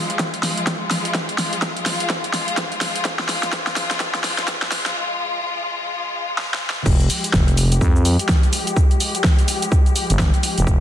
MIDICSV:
0, 0, Header, 1, 4, 480
1, 0, Start_track
1, 0, Key_signature, -4, "minor"
1, 0, Tempo, 476190
1, 1155, Time_signature, 4, 2, 24, 8
1, 10887, End_track
2, 0, Start_track
2, 0, Title_t, "String section"
2, 0, Program_c, 0, 48
2, 0, Note_on_c, 0, 53, 68
2, 0, Note_on_c, 0, 56, 61
2, 0, Note_on_c, 0, 65, 77
2, 6875, Note_off_c, 0, 53, 0
2, 6875, Note_off_c, 0, 56, 0
2, 6875, Note_off_c, 0, 65, 0
2, 6914, Note_on_c, 0, 53, 73
2, 6914, Note_on_c, 0, 56, 70
2, 6914, Note_on_c, 0, 67, 84
2, 10887, Note_off_c, 0, 53, 0
2, 10887, Note_off_c, 0, 56, 0
2, 10887, Note_off_c, 0, 67, 0
2, 10887, End_track
3, 0, Start_track
3, 0, Title_t, "FM bass"
3, 0, Program_c, 1, 39
3, 6914, Note_on_c, 1, 29, 98
3, 7139, Note_off_c, 1, 29, 0
3, 7394, Note_on_c, 1, 29, 98
3, 7859, Note_off_c, 1, 29, 0
3, 7874, Note_on_c, 1, 41, 99
3, 8236, Note_off_c, 1, 41, 0
3, 10180, Note_on_c, 1, 31, 99
3, 10397, Note_off_c, 1, 31, 0
3, 10661, Note_on_c, 1, 29, 95
3, 10740, Note_off_c, 1, 29, 0
3, 10887, End_track
4, 0, Start_track
4, 0, Title_t, "Drums"
4, 100, Note_on_c, 9, 42, 50
4, 194, Note_off_c, 9, 42, 0
4, 194, Note_on_c, 9, 36, 112
4, 194, Note_on_c, 9, 38, 77
4, 194, Note_on_c, 9, 42, 62
4, 295, Note_off_c, 9, 36, 0
4, 295, Note_off_c, 9, 38, 0
4, 295, Note_off_c, 9, 42, 0
4, 340, Note_on_c, 9, 42, 34
4, 435, Note_on_c, 9, 38, 76
4, 435, Note_on_c, 9, 46, 102
4, 441, Note_off_c, 9, 42, 0
4, 535, Note_off_c, 9, 38, 0
4, 535, Note_off_c, 9, 46, 0
4, 579, Note_on_c, 9, 42, 51
4, 674, Note_off_c, 9, 42, 0
4, 674, Note_on_c, 9, 36, 99
4, 674, Note_on_c, 9, 38, 81
4, 674, Note_on_c, 9, 42, 64
4, 775, Note_off_c, 9, 36, 0
4, 775, Note_off_c, 9, 38, 0
4, 775, Note_off_c, 9, 42, 0
4, 915, Note_on_c, 9, 38, 79
4, 915, Note_on_c, 9, 46, 100
4, 1015, Note_off_c, 9, 38, 0
4, 1015, Note_off_c, 9, 46, 0
4, 1060, Note_on_c, 9, 42, 49
4, 1154, Note_on_c, 9, 36, 112
4, 1155, Note_off_c, 9, 42, 0
4, 1155, Note_on_c, 9, 38, 86
4, 1155, Note_on_c, 9, 42, 67
4, 1255, Note_off_c, 9, 36, 0
4, 1256, Note_off_c, 9, 38, 0
4, 1256, Note_off_c, 9, 42, 0
4, 1300, Note_on_c, 9, 42, 35
4, 1395, Note_on_c, 9, 38, 84
4, 1395, Note_on_c, 9, 46, 102
4, 1401, Note_off_c, 9, 42, 0
4, 1496, Note_off_c, 9, 38, 0
4, 1496, Note_off_c, 9, 46, 0
4, 1540, Note_on_c, 9, 42, 49
4, 1634, Note_on_c, 9, 36, 100
4, 1635, Note_off_c, 9, 42, 0
4, 1635, Note_on_c, 9, 38, 82
4, 1635, Note_on_c, 9, 42, 63
4, 1735, Note_off_c, 9, 36, 0
4, 1735, Note_off_c, 9, 38, 0
4, 1735, Note_off_c, 9, 42, 0
4, 1780, Note_on_c, 9, 42, 35
4, 1874, Note_on_c, 9, 38, 86
4, 1874, Note_on_c, 9, 46, 100
4, 1880, Note_off_c, 9, 42, 0
4, 1975, Note_off_c, 9, 38, 0
4, 1975, Note_off_c, 9, 46, 0
4, 2020, Note_on_c, 9, 42, 52
4, 2114, Note_off_c, 9, 42, 0
4, 2114, Note_on_c, 9, 36, 112
4, 2114, Note_on_c, 9, 38, 88
4, 2114, Note_on_c, 9, 42, 65
4, 2215, Note_off_c, 9, 36, 0
4, 2215, Note_off_c, 9, 38, 0
4, 2215, Note_off_c, 9, 42, 0
4, 2259, Note_on_c, 9, 42, 37
4, 2354, Note_on_c, 9, 38, 84
4, 2354, Note_on_c, 9, 46, 98
4, 2360, Note_off_c, 9, 42, 0
4, 2455, Note_off_c, 9, 38, 0
4, 2455, Note_off_c, 9, 46, 0
4, 2499, Note_on_c, 9, 42, 53
4, 2595, Note_off_c, 9, 42, 0
4, 2595, Note_on_c, 9, 36, 103
4, 2595, Note_on_c, 9, 38, 91
4, 2595, Note_on_c, 9, 42, 69
4, 2695, Note_off_c, 9, 36, 0
4, 2696, Note_off_c, 9, 38, 0
4, 2696, Note_off_c, 9, 42, 0
4, 2740, Note_on_c, 9, 42, 37
4, 2834, Note_on_c, 9, 38, 88
4, 2834, Note_on_c, 9, 46, 101
4, 2841, Note_off_c, 9, 42, 0
4, 2935, Note_off_c, 9, 38, 0
4, 2935, Note_off_c, 9, 46, 0
4, 2979, Note_on_c, 9, 42, 52
4, 3074, Note_off_c, 9, 42, 0
4, 3074, Note_on_c, 9, 36, 108
4, 3074, Note_on_c, 9, 38, 90
4, 3074, Note_on_c, 9, 42, 72
4, 3175, Note_off_c, 9, 36, 0
4, 3175, Note_off_c, 9, 38, 0
4, 3175, Note_off_c, 9, 42, 0
4, 3219, Note_on_c, 9, 38, 83
4, 3314, Note_off_c, 9, 38, 0
4, 3314, Note_on_c, 9, 38, 92
4, 3314, Note_on_c, 9, 46, 104
4, 3415, Note_off_c, 9, 38, 0
4, 3415, Note_off_c, 9, 46, 0
4, 3459, Note_on_c, 9, 38, 80
4, 3459, Note_on_c, 9, 42, 52
4, 3554, Note_on_c, 9, 36, 100
4, 3555, Note_off_c, 9, 38, 0
4, 3555, Note_off_c, 9, 42, 0
4, 3555, Note_on_c, 9, 38, 91
4, 3555, Note_on_c, 9, 42, 65
4, 3655, Note_off_c, 9, 36, 0
4, 3655, Note_off_c, 9, 38, 0
4, 3655, Note_off_c, 9, 42, 0
4, 3700, Note_on_c, 9, 38, 81
4, 3700, Note_on_c, 9, 42, 38
4, 3795, Note_off_c, 9, 38, 0
4, 3795, Note_on_c, 9, 38, 94
4, 3795, Note_on_c, 9, 46, 101
4, 3800, Note_off_c, 9, 42, 0
4, 3895, Note_off_c, 9, 38, 0
4, 3895, Note_off_c, 9, 46, 0
4, 3939, Note_on_c, 9, 38, 89
4, 3939, Note_on_c, 9, 42, 55
4, 4034, Note_on_c, 9, 36, 111
4, 4035, Note_off_c, 9, 38, 0
4, 4035, Note_off_c, 9, 42, 0
4, 4035, Note_on_c, 9, 38, 95
4, 4035, Note_on_c, 9, 42, 67
4, 4135, Note_off_c, 9, 36, 0
4, 4135, Note_off_c, 9, 38, 0
4, 4135, Note_off_c, 9, 42, 0
4, 4179, Note_on_c, 9, 38, 83
4, 4179, Note_on_c, 9, 42, 35
4, 4274, Note_off_c, 9, 38, 0
4, 4274, Note_on_c, 9, 38, 97
4, 4274, Note_on_c, 9, 46, 99
4, 4280, Note_off_c, 9, 42, 0
4, 4375, Note_off_c, 9, 38, 0
4, 4375, Note_off_c, 9, 46, 0
4, 4420, Note_on_c, 9, 38, 86
4, 4420, Note_on_c, 9, 42, 55
4, 4514, Note_off_c, 9, 38, 0
4, 4514, Note_off_c, 9, 42, 0
4, 4514, Note_on_c, 9, 36, 103
4, 4514, Note_on_c, 9, 38, 104
4, 4514, Note_on_c, 9, 42, 69
4, 4615, Note_off_c, 9, 36, 0
4, 4615, Note_off_c, 9, 38, 0
4, 4615, Note_off_c, 9, 42, 0
4, 4659, Note_on_c, 9, 38, 89
4, 4754, Note_off_c, 9, 38, 0
4, 4754, Note_on_c, 9, 38, 102
4, 4754, Note_on_c, 9, 46, 98
4, 4855, Note_off_c, 9, 38, 0
4, 4855, Note_off_c, 9, 46, 0
4, 4899, Note_on_c, 9, 38, 89
4, 4899, Note_on_c, 9, 42, 55
4, 5000, Note_off_c, 9, 38, 0
4, 5000, Note_off_c, 9, 42, 0
4, 6434, Note_on_c, 9, 38, 71
4, 6535, Note_off_c, 9, 38, 0
4, 6594, Note_on_c, 9, 38, 86
4, 6695, Note_off_c, 9, 38, 0
4, 6754, Note_on_c, 9, 38, 97
4, 6855, Note_off_c, 9, 38, 0
4, 6914, Note_on_c, 9, 36, 115
4, 6914, Note_on_c, 9, 49, 108
4, 6917, Note_on_c, 9, 82, 46
4, 7015, Note_off_c, 9, 36, 0
4, 7015, Note_off_c, 9, 49, 0
4, 7018, Note_off_c, 9, 82, 0
4, 7059, Note_on_c, 9, 42, 54
4, 7062, Note_on_c, 9, 82, 23
4, 7155, Note_on_c, 9, 46, 108
4, 7157, Note_off_c, 9, 82, 0
4, 7157, Note_on_c, 9, 82, 81
4, 7160, Note_off_c, 9, 42, 0
4, 7255, Note_off_c, 9, 46, 0
4, 7258, Note_off_c, 9, 82, 0
4, 7300, Note_on_c, 9, 42, 69
4, 7302, Note_on_c, 9, 82, 33
4, 7394, Note_on_c, 9, 36, 118
4, 7394, Note_on_c, 9, 38, 117
4, 7397, Note_off_c, 9, 82, 0
4, 7397, Note_on_c, 9, 82, 45
4, 7401, Note_off_c, 9, 42, 0
4, 7495, Note_off_c, 9, 36, 0
4, 7495, Note_off_c, 9, 38, 0
4, 7498, Note_off_c, 9, 82, 0
4, 7540, Note_on_c, 9, 42, 56
4, 7542, Note_on_c, 9, 82, 22
4, 7634, Note_on_c, 9, 46, 108
4, 7637, Note_off_c, 9, 82, 0
4, 7637, Note_on_c, 9, 82, 79
4, 7641, Note_off_c, 9, 42, 0
4, 7735, Note_off_c, 9, 46, 0
4, 7738, Note_off_c, 9, 82, 0
4, 7780, Note_on_c, 9, 42, 71
4, 7783, Note_on_c, 9, 82, 35
4, 7874, Note_on_c, 9, 36, 121
4, 7877, Note_off_c, 9, 82, 0
4, 7877, Note_on_c, 9, 82, 45
4, 7881, Note_off_c, 9, 42, 0
4, 7975, Note_off_c, 9, 36, 0
4, 7978, Note_off_c, 9, 82, 0
4, 8022, Note_on_c, 9, 82, 23
4, 8115, Note_on_c, 9, 46, 100
4, 8117, Note_off_c, 9, 82, 0
4, 8117, Note_on_c, 9, 82, 76
4, 8216, Note_off_c, 9, 46, 0
4, 8218, Note_off_c, 9, 82, 0
4, 8260, Note_on_c, 9, 42, 71
4, 8262, Note_on_c, 9, 82, 34
4, 8354, Note_on_c, 9, 38, 127
4, 8355, Note_on_c, 9, 36, 118
4, 8357, Note_off_c, 9, 82, 0
4, 8357, Note_on_c, 9, 82, 47
4, 8361, Note_off_c, 9, 42, 0
4, 8455, Note_off_c, 9, 36, 0
4, 8455, Note_off_c, 9, 38, 0
4, 8458, Note_off_c, 9, 82, 0
4, 8500, Note_on_c, 9, 42, 41
4, 8503, Note_on_c, 9, 82, 23
4, 8595, Note_on_c, 9, 46, 107
4, 8598, Note_off_c, 9, 82, 0
4, 8598, Note_on_c, 9, 82, 78
4, 8601, Note_off_c, 9, 42, 0
4, 8696, Note_off_c, 9, 46, 0
4, 8699, Note_off_c, 9, 82, 0
4, 8741, Note_on_c, 9, 42, 69
4, 8743, Note_on_c, 9, 82, 33
4, 8835, Note_on_c, 9, 36, 116
4, 8838, Note_off_c, 9, 82, 0
4, 8838, Note_on_c, 9, 82, 44
4, 8842, Note_off_c, 9, 42, 0
4, 8936, Note_off_c, 9, 36, 0
4, 8939, Note_off_c, 9, 82, 0
4, 8981, Note_on_c, 9, 42, 52
4, 8983, Note_on_c, 9, 82, 21
4, 9075, Note_on_c, 9, 46, 113
4, 9078, Note_off_c, 9, 82, 0
4, 9078, Note_on_c, 9, 82, 79
4, 9081, Note_off_c, 9, 42, 0
4, 9176, Note_off_c, 9, 46, 0
4, 9179, Note_off_c, 9, 82, 0
4, 9221, Note_on_c, 9, 42, 66
4, 9223, Note_on_c, 9, 82, 32
4, 9315, Note_on_c, 9, 36, 123
4, 9315, Note_on_c, 9, 38, 124
4, 9318, Note_off_c, 9, 82, 0
4, 9318, Note_on_c, 9, 82, 44
4, 9321, Note_off_c, 9, 42, 0
4, 9416, Note_off_c, 9, 36, 0
4, 9416, Note_off_c, 9, 38, 0
4, 9419, Note_off_c, 9, 82, 0
4, 9461, Note_on_c, 9, 42, 54
4, 9464, Note_on_c, 9, 82, 21
4, 9556, Note_on_c, 9, 46, 107
4, 9558, Note_off_c, 9, 82, 0
4, 9558, Note_on_c, 9, 82, 76
4, 9562, Note_off_c, 9, 42, 0
4, 9656, Note_off_c, 9, 46, 0
4, 9659, Note_off_c, 9, 82, 0
4, 9701, Note_on_c, 9, 42, 69
4, 9703, Note_on_c, 9, 82, 33
4, 9795, Note_on_c, 9, 36, 122
4, 9798, Note_off_c, 9, 82, 0
4, 9798, Note_on_c, 9, 82, 43
4, 9801, Note_off_c, 9, 42, 0
4, 9896, Note_off_c, 9, 36, 0
4, 9899, Note_off_c, 9, 82, 0
4, 9941, Note_on_c, 9, 42, 36
4, 9943, Note_on_c, 9, 82, 22
4, 10036, Note_on_c, 9, 46, 107
4, 10038, Note_off_c, 9, 82, 0
4, 10038, Note_on_c, 9, 82, 72
4, 10041, Note_off_c, 9, 42, 0
4, 10136, Note_off_c, 9, 46, 0
4, 10139, Note_off_c, 9, 82, 0
4, 10181, Note_on_c, 9, 42, 67
4, 10183, Note_on_c, 9, 82, 34
4, 10275, Note_on_c, 9, 36, 124
4, 10275, Note_on_c, 9, 38, 127
4, 10278, Note_off_c, 9, 82, 0
4, 10278, Note_on_c, 9, 82, 47
4, 10282, Note_off_c, 9, 42, 0
4, 10376, Note_off_c, 9, 36, 0
4, 10376, Note_off_c, 9, 38, 0
4, 10379, Note_off_c, 9, 82, 0
4, 10421, Note_on_c, 9, 42, 39
4, 10423, Note_on_c, 9, 82, 23
4, 10516, Note_on_c, 9, 46, 109
4, 10518, Note_off_c, 9, 82, 0
4, 10518, Note_on_c, 9, 82, 73
4, 10522, Note_off_c, 9, 42, 0
4, 10617, Note_off_c, 9, 46, 0
4, 10619, Note_off_c, 9, 82, 0
4, 10661, Note_on_c, 9, 42, 66
4, 10663, Note_on_c, 9, 82, 33
4, 10755, Note_on_c, 9, 36, 126
4, 10758, Note_off_c, 9, 82, 0
4, 10758, Note_on_c, 9, 82, 44
4, 10761, Note_off_c, 9, 42, 0
4, 10856, Note_off_c, 9, 36, 0
4, 10859, Note_off_c, 9, 82, 0
4, 10887, End_track
0, 0, End_of_file